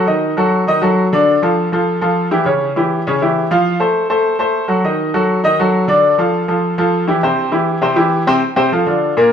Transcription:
0.07 D#3 D#4 D#5
0.37 F#3 F#4 A4
0.67 D#3 D#4 D#5
0.81 F#3 F#4 A4
1.13 D3 D4 D5
1.42 F3 F4 A4
1.72 F3 F4 A4
2.01 F3 F4 A4
2.31 E3 E4 G4
2.45 C#3 C#4 C#5
2.76 E3 E4 G4
3.07 C#3 C#4 C#5
3.22 E3 E4 G4
3.51 F3 F4 F5
3.80 A3 A4 C5
4.10 A3 A4 C5
4.39 A3 A4 C5
4.68 F#3 F#4 A4
4.84 D#3 D#4 D#5
5.14 F#3 F#4 A4
5.44 D#3 D#4 D#5
5.59 F#3 F#4 A4
5.88 D3 D4 D5
6.18 F3 F4 A4
6.48 F3 F4 A4
6.78 F3 F4 A4
7.08 E3 E4 G4
7.23 C3 C4 C5
7.52 E3 E4 G4
7.82 C3 C4 C5
7.96 E3 E4 G4
8.27 C3 C4 C5
8.56 C3 C4 C5
8.72 F3 F4 A4
8.87 D3 D4 F4
9.17 A#2 A#3 A#4

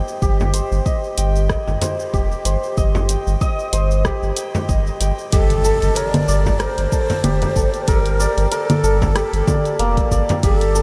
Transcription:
Already playing: G4 C5 D#5 G5
0.08 cabasa
0.22 G1 G4, kick, cabasa
0.40 frame drum, cabasa
0.54 C5, closed hi-hat, cabasa
0.72 G1, cabasa
0.86 D#5, kick, cabasa
1.04 cabasa
1.18 G1 G5, closed hi-hat, cabasa
1.36 cabasa
1.49 D#5, kick, cross-stick, cabasa
1.67 G1, frame drum, cabasa
1.82 C5, closed hi-hat, frame drum, cabasa
2.00 cabasa
2.13 F1 G4, kick, cabasa
2.32 cabasa
2.45 G1 C5, closed hi-hat, cabasa
2.63 cabasa
2.77 G1 D#5, kick, cabasa
2.95 frame drum, cabasa
3.09 G5, closed hi-hat, cabasa
3.27 G1, cabasa
3.41 D#5, kick, cabasa
3.59 cabasa
3.73 G1 C5, closed hi-hat, cabasa
3.91 cabasa
4.05 G4, kick, cross-stick, cabasa
4.23 G1, cabasa
4.36 G5, closed hi-hat, cabasa
4.55 frame drum, cabasa
4.69 G1 D#5, kick, cabasa
4.87 cabasa
5.01 G1 G5, closed hi-hat, cabasa
5.18 cabasa
5.32 G1 G4 A4, kick, closed hi-hat, impact, cabasa
5.50 closed hi-hat, cabasa
5.64 A4, cabasa
5.82 G1, closed hi-hat, cabasa
5.96 A#4 C#5, closed hi-hat, cabasa
6.09 D5
6.14 closed hi-hat, low conga, cabasa
6.28 G1 D5, cabasa
6.46 kick, frame drum, cabasa
6.59 A#4 C5, cross-stick, closed hi-hat, cabasa
6.78 G1, closed hi-hat, cabasa
6.92 A4, kick, cabasa
7.10 closed hi-hat, frame drum, cabasa
7.24 F1 G4, closed hi-hat, low conga, cabasa
7.42 closed hi-hat, frame drum, cabasa
7.56 G1 A4, kick, cabasa
7.74 closed hi-hat, cabasa
7.87 G1 A4 A#4, kick, closed hi-hat, cabasa
7.99 A#4
8.06 closed hi-hat, cabasa
8.20 D5, cabasa
8.37 G1, closed hi-hat, cabasa
8.51 A4 A#4, closed hi-hat, cabasa
8.70 closed hi-hat, low conga, cabasa
8.83 G1 A4, cabasa
9.02 kick, frame drum, cabasa
9.15 G4, cross-stick, closed hi-hat, cabasa
9.33 G1, closed hi-hat, cabasa
9.47 D5, kick, low conga, cabasa
9.65 closed hi-hat, cabasa
9.79 F1 A#3, closed hi-hat, cabasa
9.97 kick, closed hi-hat, cabasa
10.11 G1 D5, kick, cabasa
10.29 closed hi-hat, frame drum, cabasa
10.43 G1 G4 G#4, kick, closed hi-hat, cabasa
10.56 A4
10.61 closed hi-hat, cabasa
10.75 A4, cabasa

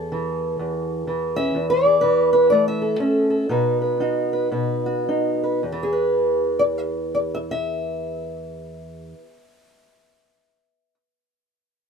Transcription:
Already playing: E2 A4
0.12 E3
0.59 E2
1.07 E3
1.36 C#4 E5
1.55 E2
1.70 D5
1.86 G#4
2.01 E3 B4
2.33 B4
2.50 A3 D5
2.68 E5
2.82 A4
3.00 C#4 A4
3.30 A4
3.49 B2 D#4 F#4 B4
3.82 B4
4.00 D#4 F#4
4.33 B4
4.51 B2 B4
4.86 F#4
5.09 D#4
5.43 B4
5.63 E2
5.72 E3
5.83 G#4
5.93 B4
6.59 D5
6.78 E5
7.15 D5
7.35 E5
7.51 E5

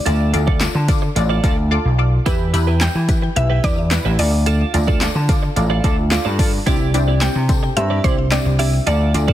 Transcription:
Already playing: D5
0.06 D2 F4 A4 D5, closed hi-hat, tambourine
0.33 D2 F4 A4 D5, muted clean electric guitar stroke, closed hi-hat, tambourine
0.47 F4 A4 D5, kick
0.61 F4 A4 D5, muted clean electric guitar stroke, snare, clap, closed hi-hat, tambourine
0.75 D3, muted clean electric guitar stroke
0.88 F4 A4 D5, kick, closed hi-hat, tambourine
1.02 muted clean electric guitar stroke
1.16 A1 F4 A4 D5, muted clean electric guitar stroke, closed hi-hat, tambourine
1.29 F4 A4 D5
1.43 F4 A4 D5, kick, closed hi-hat, tambourine
1.57 muted clean electric guitar stroke
1.71 F4 A4 D5
1.85 B1
1.98 F4 A4 D5
2.26 E2 E4 G4 B4, kick, closed hi-hat, tambourine
2.53 E2 E4 G4 B4, muted clean electric guitar stroke, closed hi-hat, tambourine
2.67 E4 G4 B4
2.81 E4 G4 B4 G5, snare, clap, closed hi-hat, tambourine
2.95 E3, muted clean electric guitar stroke
3.09 E4 G4 B4, kick, closed hi-hat, tambourine
3.22 muted clean electric guitar stroke
3.36 B1 E4 G4 B4 E5, muted clean electric guitar stroke, closed hi-hat
3.50 E4 G4 B4
3.64 E2 E4 G4 B4 D5, kick, closed hi-hat, tambourine
3.91 E4 G4 B4, muted clean electric guitar stroke, snare, clap, closed hi-hat, tambourine
4.05 A1 E4 G4 B4
4.19 D2 F4 A4 D5, open hi-hat, tambourine
4.33 muted clean electric guitar stroke
4.46 F4 A4 D5, closed hi-hat, tambourine
4.74 D2 F4 A4 D5, muted clean electric guitar stroke, closed hi-hat, tambourine
4.88 F4 A4 D5, kick
5.01 F4 A4 D5, muted clean electric guitar stroke, snare, clap, closed hi-hat, tambourine
5.15 D3, muted clean electric guitar stroke
5.29 F4 A4 D5, kick, closed hi-hat, tambourine
5.43 muted clean electric guitar stroke
5.56 A1 F4 A4 D5, muted clean electric guitar stroke, closed hi-hat, tambourine
5.70 F4 A4 D5
5.84 D2 F4 A4 D5, kick, closed hi-hat, tambourine
5.98 muted clean electric guitar stroke
6.11 F4 A4 D5, muted clean electric guitar stroke, snare, clap, closed hi-hat, tambourine
6.25 G2 F4 A4 D5
6.39 F4 A4 D5, kick, open hi-hat, tambourine
6.53 muted clean electric guitar stroke
6.66 C2 C4 D4 E4 G4 D5, kick, closed hi-hat, tambourine
6.94 C2 C4 D4 E4 G4 D5, muted clean electric guitar stroke, closed hi-hat, tambourine
7.08 E4 G4 D5
7.21 C4 D4 E4 G4 D5 G5, muted clean electric guitar stroke, snare, clap, closed hi-hat, tambourine
7.35 C3, muted clean electric guitar stroke
7.49 C4 D4 E4 G4 A4, kick, closed hi-hat, tambourine
7.63 muted clean electric guitar stroke
7.77 G2 C4 D4 E4 G4 C5 E5, muted clean electric guitar stroke, closed hi-hat
7.90 E4 G4 D5
8.04 C2 C4 D4 E4 G4 C5 D5, kick, closed hi-hat, tambourine
8.18 muted clean electric guitar stroke
8.31 C4 D4 E4 G4 D5, muted clean electric guitar stroke, snare, clap, closed hi-hat, tambourine
8.45 C2, muted clean electric guitar stroke
8.59 C4 D4 E4 G4 D5 E5, open hi-hat, tambourine
8.73 muted clean electric guitar stroke
8.87 D2 F4 A4 D5, closed hi-hat, tambourine
9.14 D2 F4 A4 D5, closed hi-hat, tambourine
9.28 F4 A4 D5, kick

